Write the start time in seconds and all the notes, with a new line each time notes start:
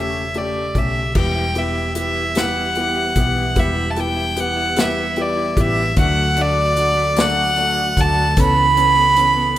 Already playing: E1 C#3 A3 C#4 G4 E5
0.34 A3 C#4 G4 D5, closed hi-hat
0.75 B1 A3 C#4 G4 E5, kick, closed hi-hat
1.15 E1 E3 G3 B3 E4 G4 G5, kick, crash
1.35 E4
1.55 B3 E4 G4 E5, closed hi-hat
1.76 E4
1.95 B3 E4 G4 E5, closed hi-hat
2.16 E4
2.35 G3 B3 E4 G4 F#5, snare, closed hi-hat
2.57 E4
2.75 B3 E4 G4, closed hi-hat
2.97 E4
3.16 B1 B3 E4 G4, kick, closed hi-hat
3.37 E4
3.56 E1 G3 B3 E4 G4 E5, kick, closed hi-hat
3.77 E4
3.91 A5
3.96 B3 E4 G4 G5, closed hi-hat
4.16 E4
4.36 B3 E4 G4 F#5, closed hi-hat
4.56 E4
4.76 G3 B3 E4 G4 E5, snare, closed hi-hat
4.97 E4
5.16 B3 E4 G4, closed hi-hat
5.21 D5
5.37 E4
5.56 A1 B3 E4 G4, kick, closed hi-hat
5.60 E5
5.77 E4
5.97 D2 D3 F#3 A3 D4 F#4 F#5, kick, closed hi-hat
6.17 A3
6.36 A3 D4 F#4, closed hi-hat
6.41 D5
6.58 A3
6.77 F#3 A3 D4 F#4, closed hi-hat
6.97 A3
7.16 F#3 A3 D4 F#4, snare, closed hi-hat
7.21 F#5
7.37 A3
7.56 A3 D4 F#4, closed hi-hat
7.77 A3
7.97 D2 F#3 A3 D4 F#4 A5, kick, closed hi-hat
8.17 A3
8.37 C#2 C#3 E3 B3 C#4 A4 B5, kick, closed hi-hat
8.56 B3
8.77 B3 C#4 A4, closed hi-hat
8.97 B3
9.16 E3 B3 C#4 A4, closed hi-hat
9.37 B3